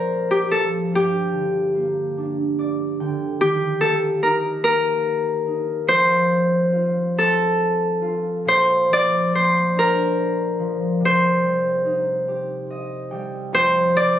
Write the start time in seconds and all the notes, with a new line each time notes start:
Already playing: A#2 F3 A#3 C4 F4 A#4 C5 D5
0.31 G4
0.49 F3 A4
0.91 G2 G4
1.32 D3
1.74 A#3
2.18 D4
2.59 D5
3.00 D3 G5
3.41 D#3 G4
3.81 A#3 A4
4.23 D#4 A#4
4.64 A#3 A#4
5.46 D#4
5.87 F3 C5
6.30 C4
6.72 F4
7.17 C4 A4
8.02 F4
8.45 A#2 C5
8.89 F3 D5
9.32 A#3 C5
9.75 D4 A#4
10.59 F3
11.00 C3
11.05 C5
11.43 G3
11.85 D#4
12.28 G4
12.70 D#5
13.11 G3 G5
13.53 F2 C5
13.95 C3 D5